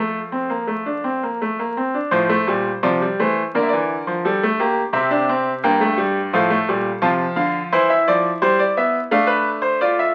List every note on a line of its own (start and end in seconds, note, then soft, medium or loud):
0.00 1.71 F3 medium
0.00 0.18 A3 medium
0.00 1.72 A4 medium
0.00 1.72 F5 medium
0.32 0.50 C4 medium
0.50 0.68 A#3 medium
0.67 0.85 A3 medium
0.86 1.04 D4 medium
1.04 1.22 C4 medium
1.23 1.40 A#3 medium
1.42 1.58 A3 medium
1.59 1.76 A#3 medium
1.77 1.94 C4 medium
1.94 2.12 D4 medium
2.11 2.34 A2 medium
2.11 2.29 F3 medium
2.11 2.81 C5 medium
2.29 2.47 A3 medium
2.47 2.70 A#2 medium
2.47 2.70 G3 medium
2.83 3.05 C3 medium
2.83 3.00 F3 medium
2.83 3.05 D5 medium
3.02 3.19 G3 medium
3.20 3.41 E3 medium
3.20 3.41 A3 medium
3.20 3.41 C5 medium
3.55 4.90 D3 medium
3.55 3.72 A#3 medium
3.55 4.23 A#4 medium
3.55 3.61 D5 medium
3.63 3.69 E5 medium
3.69 4.91 D5 medium
3.73 3.94 E3 medium
4.07 4.24 F3 medium
4.25 4.42 G3 medium
4.25 4.46 A4 medium
4.43 4.60 A3 medium
4.60 4.81 A#3 medium
4.60 4.81 G4 medium
4.93 5.61 C3 medium
4.93 5.10 C4 medium
4.93 6.29 G4 medium
4.93 5.61 E5 medium
5.11 5.28 D4 medium
5.29 5.51 C4 medium
5.64 6.31 G2 medium
5.64 5.81 A#3 medium
5.64 6.32 G5 medium
5.81 5.98 A3 medium
5.98 6.19 G3 medium
6.33 6.55 A2 medium
6.33 6.50 F3 medium
6.33 7.01 A4 medium
6.33 7.01 F5 medium
6.50 6.67 A3 medium
6.69 6.90 A#2 medium
6.69 6.90 G3 medium
7.02 7.24 C3 medium
7.02 7.70 F3 medium
7.02 7.70 F4 medium
7.02 7.24 A5 medium
7.36 7.58 D3 medium
7.36 7.58 F5 medium
7.72 7.94 E3 medium
7.72 9.07 E4 medium
7.72 7.89 C5 medium
7.90 8.06 E5 medium
8.08 8.29 F3 medium
8.08 8.29 D5 loud
8.42 8.63 G3 medium
8.42 8.58 C5 medium
8.59 8.76 D5 medium
8.77 8.98 B3 medium
8.77 8.98 E5 medium
9.11 10.15 A3 medium
9.11 9.79 D4 medium
9.11 9.28 F5 medium
9.27 9.49 B4 medium
9.62 9.79 C5 medium
9.81 10.15 F4 medium
9.81 9.98 D5 medium
9.99 10.15 E5 medium